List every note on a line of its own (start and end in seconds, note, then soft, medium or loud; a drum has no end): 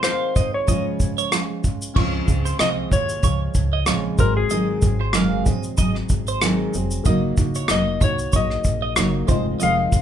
0.00 0.64 G#3 medium
0.00 0.65 F4 medium
0.00 0.54 C5 medium
0.00 0.66 D#5 medium
0.00 cross-stick medium
0.00 shaker medium
0.04 0.36 D#3 medium
0.04 0.37 G#3 medium
0.04 0.36 C4 medium
0.04 0.36 F4 medium
0.04 0.35 F5 medium
0.36 0.69 D#3 soft
0.36 0.69 G#3 soft
0.36 0.69 C4 soft
0.36 0.68 F4 soft
0.36 0.53 D#5 medium
0.36 kick medium
0.36 shaker soft
0.54 1.28 C#5 medium
0.66 1.33 C#3 medium
0.66 1.32 F3 medium
0.66 1.92 G#3 medium
0.66 1.33 G#3 medium
0.66 1.93 F4 soft
0.66 0.85 D#5 medium
0.66 kick medium
0.66 shaker medium
0.70 1.33 C#4 medium
0.70 1.34 F4 medium
0.70 0.76 C5 soft
0.76 1.97 C#5 medium
1.00 kick medium
1.00 shaker medium
1.18 1.32 C#5 medium
1.18 shaker soft
1.32 1.64 F3 medium
1.32 1.64 G#3 medium
1.32 1.64 C#4 medium
1.32 1.63 F4 medium
1.32 cross-stick medium
1.32 shaker medium
1.64 1.95 G#3 soft
1.64 1.97 C#4 soft
1.64 1.96 F4 soft
1.64 kick medium
1.64 shaker soft
1.82 shaker medium
1.94 2.22 C#2 medium
1.94 2.28 C#3 medium
1.94 2.28 F3 medium
1.94 2.28 G#3 medium
1.94 2.28 C4 medium
1.94 4.14 C#4 medium
1.94 4.15 F4 medium
1.94 2.26 F4 medium
1.94 2.13 C#5 medium
1.94 kick medium
1.94 crash medium
1.98 4.16 C#6 medium
2.28 2.54 C#2 medium
2.28 2.59 G#3 soft
2.28 2.60 C4 medium
2.28 2.60 F4 medium
2.28 kick medium
2.28 shaker soft
2.45 2.59 C5 medium
2.45 shaker soft
2.59 2.86 C2 medium
2.59 2.92 F3 medium
2.59 2.92 G#3 medium
2.59 2.92 C4 medium
2.59 2.90 F4 medium
2.59 2.92 D#5 medium
2.59 2.69 D#5 medium
2.59 cross-stick loud
2.59 shaker medium
2.92 3.18 D#2 medium
2.92 3.22 G#3 soft
2.92 3.23 F4 soft
2.92 3.08 C#5 medium
2.92 3.84 C#5 medium
2.92 kick medium
2.92 shaker soft
3.09 shaker soft
3.22 3.49 C#2 medium
3.22 3.86 F3 soft
3.22 3.87 G#3 medium
3.22 3.86 F4 medium
3.22 3.40 C#5 medium
3.22 kick medium
3.22 shaker medium
3.54 3.81 C#2 medium
3.54 kick medium
3.54 shaker medium
3.73 3.87 D#5 medium
3.86 4.13 A#1 medium
3.86 4.19 C#3 medium
3.86 4.19 F3 medium
3.86 4.19 G#3 medium
3.86 4.19 C4 medium
3.86 4.19 F4 medium
3.86 4.04 C#5 medium
3.86 cross-stick medium
3.86 shaker medium
4.17 4.45 G#1 medium
4.17 6.69 G#3 medium
4.17 4.50 G#3 soft
4.17 4.50 C4 soft
4.17 6.70 F#4 medium
4.17 4.50 G#4 medium
4.17 4.36 A#4 medium
4.17 4.36 C5 medium
4.17 kick medium
4.17 shaker soft
4.21 4.50 F#3 soft
4.21 6.71 C5 medium
4.37 6.28 G#4 medium
4.50 4.77 G#1 medium
4.50 4.83 G#2 medium
4.50 4.83 D#3 medium
4.50 4.83 F#3 medium
4.50 4.82 G#3 medium
4.50 4.81 C4 medium
4.50 4.81 G#4 medium
4.50 4.68 D#5 medium
4.50 shaker medium
4.82 5.15 G#1 medium
4.82 5.13 F#3 soft
4.82 5.13 G#3 soft
4.82 5.14 C4 soft
4.82 5.14 G#4 soft
4.82 kick medium
4.82 shaker soft
5.01 5.14 C5 medium
5.13 5.41 F#1 medium
5.13 5.46 G#2 medium
5.13 5.46 D#3 medium
5.13 5.46 F#3 medium
5.13 5.46 G#3 medium
5.13 5.45 C4 medium
5.13 5.44 G#4 medium
5.13 5.46 F5 medium
5.13 cross-stick medium
5.13 shaker medium
5.46 5.73 A#1 medium
5.46 5.76 F#3 soft
5.46 5.77 G#3 soft
5.46 5.78 C4 medium
5.46 5.78 G#4 medium
5.46 5.63 D#5 medium
5.46 kick medium
5.46 shaker soft
5.63 shaker soft
5.77 6.05 G#1 medium
5.77 6.42 F#3 medium
5.77 6.42 G#3 medium
5.77 6.42 C4 medium
5.77 6.43 G#4 medium
5.77 5.95 D#5 medium
5.77 kick medium
5.77 shaker medium
5.95 cross-stick soft
6.09 6.62 G#1 medium
6.09 kick medium
6.09 shaker medium
6.27 6.42 C5 medium
6.27 shaker soft
6.42 6.74 G#2 medium
6.42 6.74 D#3 medium
6.42 6.74 F#3 medium
6.42 6.75 G#3 medium
6.42 6.74 C4 medium
6.42 6.73 G#4 medium
6.42 cross-stick medium
6.42 shaker medium
6.74 7.01 F1 medium
6.74 7.05 F#3 soft
6.74 7.06 G#3 soft
6.74 7.07 C4 medium
6.74 7.06 G#4 medium
6.74 shaker soft
6.91 shaker medium
7.04 7.32 F#1 medium
7.04 7.38 F#3 medium
7.04 9.24 A#3 medium
7.04 7.38 A#3 medium
7.04 7.37 D#4 medium
7.04 9.25 F#4 medium
7.04 7.36 F#4 medium
7.04 7.23 D#5 medium
7.04 9.26 D#5 medium
7.04 kick loud
7.04 shaker medium
7.37 7.64 F#1 loud
7.37 7.69 A#3 soft
7.37 7.70 D#4 medium
7.37 7.69 F#4 medium
7.37 kick medium
7.37 shaker soft
7.55 7.70 C#5 medium
7.55 shaker medium
7.68 7.96 F1 medium
7.68 8.02 F#3 medium
7.68 8.02 A#3 medium
7.68 8.02 D#4 medium
7.68 8.01 F#4 medium
7.68 8.00 D#5 medium
7.68 8.03 D#5 medium
7.68 cross-stick loud
7.68 shaker medium
8.01 8.27 C2 medium
8.01 8.33 A#3 soft
8.01 8.34 D#4 soft
8.01 8.34 F#4 medium
8.01 8.18 C#5 medium
8.01 8.36 C#5 medium
8.01 kick medium
8.01 shaker soft
8.19 shaker soft
8.33 8.60 A#1 medium
8.33 8.96 F#3 medium
8.33 8.96 A#3 medium
8.33 8.98 D#4 medium
8.33 8.97 F#4 medium
8.33 8.50 C#5 medium
8.33 9.63 D#5 medium
8.33 kick medium
8.33 shaker medium
8.50 cross-stick soft
8.64 8.99 A#1 medium
8.64 kick medium
8.64 shaker medium
8.82 8.96 D#5 medium
8.96 9.24 F#1 medium
8.96 9.29 F#3 medium
8.96 9.29 A#3 medium
8.96 9.29 D#4 medium
8.96 9.28 F#4 medium
8.96 9.13 C#5 medium
8.96 cross-stick loud
8.96 shaker medium
9.27 9.55 F1 loud
9.27 9.60 D#3 soft
9.27 10.02 G#3 medium
9.27 9.60 G#3 soft
9.27 9.60 C4 medium
9.27 9.60 F4 medium
9.27 10.02 F4 medium
9.27 9.45 C5 medium
9.27 kick medium
9.27 shaker soft
9.31 10.02 D#5 medium
9.60 9.87 F1 medium
9.60 9.92 F2 medium
9.60 9.93 C3 medium
9.60 9.92 D#3 medium
9.60 9.92 G#3 medium
9.60 9.91 C4 medium
9.60 9.90 F4 medium
9.60 9.77 D#5 medium
9.60 10.02 F5 loud
9.60 shaker medium
9.91 10.02 F1 medium
9.91 10.02 D#3 soft
9.91 10.02 G#3 soft
9.91 10.02 C4 soft
9.91 10.02 F4 medium
9.91 kick medium
9.91 shaker medium